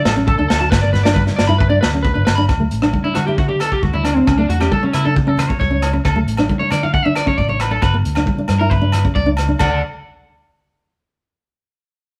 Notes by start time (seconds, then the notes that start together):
0.05 A1 A4, snare, high conga, low agogo
0.16 C#4
0.27 A4, kick, high conga
0.38 D2 D4 A4
0.48 D2 A4, snare, muted conga, low agogo
0.59 F#4 A5
0.71 G1 B4, kick, snare, muted conga, low agogo
0.81 B3 D5
0.93 B4, snare, muted conga, high conga, low conga
1.03 D4 D5, snare, low agogo
1.14 B4, kick, high conga
1.27 muted nylon-string guitar stroke, snare
1.36 G1 D5, snare, low agogo
1.47 G2 E4 B5
1.58 B4, kick, muted conga
1.70 D4 D5
1.81 D2 B4, snare, low agogo
1.94 C#4
2.03 B4, kick, high conga, low conga
2.14 G1 D4 B4
2.25 G1 B4, snare, low agogo
2.35 D4 B5
2.49 D2, kick, cross-stick, muted conga, low agogo
2.60 A3
2.71 A1, closed hi-hat, muted conga
2.82 D4, cross-stick, low agogo
2.93 kick, high conga
3.04 D4 E4
3.15 D3 F#4, cross-stick, closed hi-hat, high conga, low agogo
3.27 E4 G4
3.38 F#4, kick, muted conga
3.49 D4 G4
3.60 A4, cross-stick, closed hi-hat, low agogo
3.72 G4, kick
3.83 D2 F#4, kick, high conga
3.93 D4 E4
4.05 D4, cross-stick, closed hi-hat, low agogo
4.16 C4 D4
4.27 C#2 C#4, kick, cross-stick, low agogo
4.38 A3 D4
4.49 E2 F#4, closed hi-hat, muted conga
4.61 C#4 G4, cross-stick, low agogo
4.71 A4, kick, high conga
4.83 C#4
4.93 C#3 E4, cross-stick, closed hi-hat, low agogo
5.05 D4 A4
5.16 muted clean electric guitar stroke, kick, muted conga, low conga
5.27 C#4 A4
5.38 B4, cross-stick, closed hi-hat, low conga, low agogo
5.49 C#5, muted nylon-string guitar stroke, kick
5.59 C#2 C#5, kick, high conga
5.71 C#4
5.82 cross-stick, closed hi-hat, muted conga, low agogo
5.93 C#4, muted clean electric guitar stroke
6.05 D2 A4, kick, cross-stick, muted conga, low agogo
6.16 A3
6.27 A1, closed hi-hat, muted conga
6.37 D4, cross-stick, low agogo
6.49 kick, high conga
6.59 D4 C#5
6.70 D3 D5, cross-stick, closed hi-hat, high conga, low agogo
6.83 E4 F5
6.94 F#5, kick, muted conga
7.05 D4 E5
7.15 D5, cross-stick, closed hi-hat, low agogo
7.26 C#4 C#5, kick
7.38 A1 D5, kick, high conga
7.49 D4 C#5
7.60 B4, cross-stick, closed hi-hat, muted conga, low agogo
7.71 D4 A4
7.82 G1 B4, kick, cross-stick, low agogo
7.94 B3
8.05 D2, closed hi-hat, muted conga
8.15 D4, cross-stick, low agogo
8.26 kick, high conga
8.38 D4
8.48 G2, cross-stick, closed hi-hat, high conga, low agogo
8.59 E4 A#4
8.70 B4, kick, muted conga, low conga
8.81 D4
8.92 cross-stick, closed hi-hat, low conga, low agogo
9.04 C#4, kick
9.15 C#2 D5, kick, high conga
9.26 D4
9.37 cross-stick, closed hi-hat, low agogo
9.48 D4
9.59 D2 D4 A4 D5 F#5, kick, crash, muted conga, low agogo